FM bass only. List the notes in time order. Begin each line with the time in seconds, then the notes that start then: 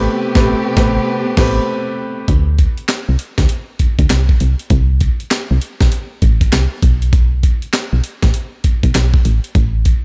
0.36 A1
0.77 A1
1.38 A1
2.28 D2
3.09 C2
3.39 D2
3.80 D2
3.99 D2
4.10 C2
4.41 C2
4.71 C2
5.51 C2
5.81 B1
6.22 A1
6.53 C2
6.83 B1
7.93 B1
8.23 A1
8.65 B1
8.84 B1
8.95 B1
9.25 A1
9.55 A1